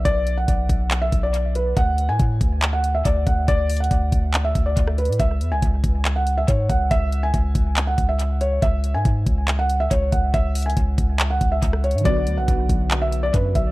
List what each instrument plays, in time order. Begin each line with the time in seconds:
0.05 808-style bass B1, felt piano D5, kick, closed hi-hat
0.27 closed hi-hat
0.38 felt piano F#5
0.48 808-style bass B1, kick, closed hi-hat
0.69 808-style bass B1, kick, closed hi-hat
0.91 clap, closed hi-hat
1.02 felt piano E5
1.12 808-style bass B1, kick, closed hi-hat
1.23 felt piano D5
1.34 closed hi-hat
1.55 felt piano B4, closed hi-hat
1.77 808-style bass D2, felt piano F#5, kick, closed hi-hat
1.98 closed hi-hat
2.09 808-style bass A2, felt piano G#5
2.20 808-style bass A2, kick, closed hi-hat
2.41 808-style bass D2, kick, closed hi-hat
2.62 clap, closed hi-hat
2.73 felt piano F#5
2.84 closed hi-hat
2.95 felt piano E5
3.05 808-style bass D2, felt piano D5, kick, closed hi-hat
3.27 808-style bass D2, felt piano F#5, kick, closed hi-hat
3.48 808-style bass D2, felt piano D5, kick, closed hi-hat
3.70 closed hi-hat, open hi-hat
3.77 felt piano F#5, closed hi-hat
3.84 closed hi-hat
3.91 808-style bass D2, kick, closed hi-hat
4.12 808-style bass D2, kick, closed hi-hat
4.34 clap, closed hi-hat
4.45 felt piano E5
4.55 808-style bass D2, kick, closed hi-hat
4.66 felt piano D5
4.77 808-style bass D2, kick, closed hi-hat
4.87 cross-stick
4.98 felt piano B4, closed hi-hat
5.05 808-style bass A2, closed hi-hat
5.12 closed hi-hat
5.20 808-style bass C#2, felt piano E5, kick, closed hi-hat
5.41 808-style bass E2, closed hi-hat
5.52 808-style bass C#2, felt piano G#5
5.62 808-style bass C#2, kick, closed hi-hat
5.84 808-style bass C#2, kick, closed hi-hat
6.05 clap, closed hi-hat
6.16 felt piano F#5
6.27 closed hi-hat
6.38 felt piano E5
6.48 808-style bass G#2, felt piano C#5, kick, closed hi-hat
6.69 808-style bass C#2, felt piano F#5, kick, closed hi-hat
6.91 808-style bass C#2, felt piano E5, kick, closed hi-hat
7.12 closed hi-hat
7.23 felt piano G#5
7.34 808-style bass C#2, kick, closed hi-hat
7.55 808-style bass C#2, kick, closed hi-hat
7.77 clap, closed hi-hat
7.87 felt piano F#5
7.98 808-style bass C#2, kick, closed hi-hat
8.09 felt piano E5
8.20 closed hi-hat
8.41 felt piano C#5, closed hi-hat
8.62 808-style bass C#2, felt piano E5, kick, closed hi-hat
8.84 closed hi-hat
8.95 808-style bass G#2, felt piano G#5
9.05 808-style bass G#2, kick, closed hi-hat
9.27 808-style bass C#2, kick, closed hi-hat
9.48 clap, closed hi-hat
9.59 felt piano F#5
9.70 closed hi-hat
9.80 felt piano E5
9.91 808-style bass C#2, felt piano C#5, kick, closed hi-hat
10.12 808-style bass C#2, felt piano F#5, kick, closed hi-hat
10.34 808-style bass C#2, felt piano E5, kick, closed hi-hat
10.55 closed hi-hat, open hi-hat
10.62 felt piano G#5, closed hi-hat
10.70 closed hi-hat
10.77 808-style bass C#2, kick, closed hi-hat
10.98 808-style bass C#2, kick, closed hi-hat
11.20 clap, closed hi-hat
11.30 felt piano F#5
11.41 808-style bass C#2, kick, closed hi-hat
11.52 felt piano E5
11.62 808-style bass C#2, kick, closed hi-hat
11.73 cross-stick
11.84 felt piano C#5, closed hi-hat
11.91 808-style bass G#2, closed hi-hat
11.98 synth keys D3, closed hi-hat
12.04 808-style bass B1, synth keys F#3 B3, felt piano D5, kick, closed hi-hat
12.10 synth keys F#4
12.27 808-style bass D2, closed hi-hat
12.37 808-style bass B1, felt piano F#5
12.48 808-style bass B1, kick, closed hi-hat
12.69 808-style bass B1, kick, closed hi-hat
12.91 clap, closed hi-hat
13.02 felt piano E5
13.12 closed hi-hat
13.23 felt piano D5
13.34 808-style bass F#2, felt piano B4, kick, closed hi-hat
13.55 808-style bass B1, felt piano E5, kick, closed hi-hat